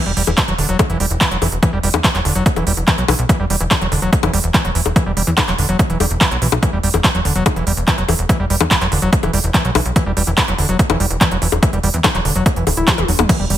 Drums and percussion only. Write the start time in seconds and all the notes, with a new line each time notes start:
0.17 open hi-hat
0.27 closed hi-hat, high bongo
0.38 kick, clap, closed hi-hat
0.48 closed hi-hat
0.58 open hi-hat
0.69 closed hi-hat
0.79 kick, closed hi-hat, high bongo
0.90 closed hi-hat
1.00 open hi-hat
1.11 closed hi-hat
1.21 kick, clap, closed hi-hat
1.31 closed hi-hat
1.42 open hi-hat, high bongo
1.52 closed hi-hat
1.63 kick, closed hi-hat
1.83 open hi-hat
1.94 closed hi-hat, high bongo
2.04 kick, clap, closed hi-hat
2.15 clap, closed hi-hat
2.25 open hi-hat
2.36 closed hi-hat
2.46 kick, closed hi-hat
2.56 closed hi-hat, high bongo
2.67 open hi-hat
2.77 closed hi-hat
2.88 kick, clap, closed hi-hat
2.98 closed hi-hat
3.08 open hi-hat, high bongo
3.19 closed hi-hat
3.29 kick, closed hi-hat
3.50 open hi-hat
3.61 closed hi-hat
3.71 kick, clap, closed hi-hat, high bongo
3.81 closed hi-hat
3.92 open hi-hat
4.02 closed hi-hat
4.13 kick, closed hi-hat
4.23 closed hi-hat, high bongo
4.33 open hi-hat
4.44 closed hi-hat
4.54 kick, clap, closed hi-hat
4.65 closed hi-hat
4.75 open hi-hat
4.86 closed hi-hat, high bongo
4.96 kick, closed hi-hat
5.17 open hi-hat
5.27 closed hi-hat
5.38 kick, clap, closed hi-hat, high bongo
5.48 clap, closed hi-hat
5.58 open hi-hat
5.69 closed hi-hat
5.79 kick, closed hi-hat
5.90 closed hi-hat
6.00 open hi-hat, high bongo
6.11 closed hi-hat
6.21 kick, clap, closed hi-hat
6.31 closed hi-hat
6.42 open hi-hat
6.52 closed hi-hat, high bongo
6.63 kick, closed hi-hat
6.83 open hi-hat
6.94 closed hi-hat, high bongo
7.04 kick, clap, closed hi-hat
7.15 closed hi-hat
7.25 open hi-hat
7.36 closed hi-hat
7.46 kick, closed hi-hat, high bongo
7.56 closed hi-hat
7.67 open hi-hat
7.77 closed hi-hat
7.88 kick, clap, closed hi-hat
7.98 closed hi-hat
8.08 open hi-hat, high bongo
8.19 closed hi-hat
8.29 kick, closed hi-hat
8.50 open hi-hat
8.61 high bongo
8.71 kick, clap, closed hi-hat
8.81 clap, closed hi-hat
8.92 open hi-hat
9.02 closed hi-hat
9.13 kick, closed hi-hat
9.23 closed hi-hat, high bongo
9.33 open hi-hat
9.44 closed hi-hat
9.54 kick, clap, closed hi-hat
9.65 closed hi-hat
9.75 open hi-hat, high bongo
9.86 closed hi-hat
9.96 kick, closed hi-hat
10.17 open hi-hat
10.27 closed hi-hat
10.38 kick, clap, closed hi-hat, high bongo
10.48 closed hi-hat
10.58 open hi-hat
10.69 closed hi-hat
10.79 kick, closed hi-hat
10.90 closed hi-hat, high bongo
11.00 open hi-hat
11.11 closed hi-hat
11.21 kick, clap, closed hi-hat
11.31 closed hi-hat
11.42 open hi-hat
11.52 closed hi-hat, high bongo
11.63 kick, closed hi-hat
11.73 closed hi-hat
11.83 open hi-hat
11.94 closed hi-hat
12.04 kick, clap, closed hi-hat, high bongo
12.15 clap, closed hi-hat
12.25 open hi-hat
12.36 closed hi-hat
12.46 kick, closed hi-hat
12.56 closed hi-hat
12.67 open hi-hat, high bongo
12.77 closed hi-hat
12.88 kick, clap, closed hi-hat, high tom
12.98 closed hi-hat, high tom
13.08 open hi-hat
13.19 closed hi-hat, mid tom, high bongo
13.29 kick, closed hi-hat, crash
13.50 open hi-hat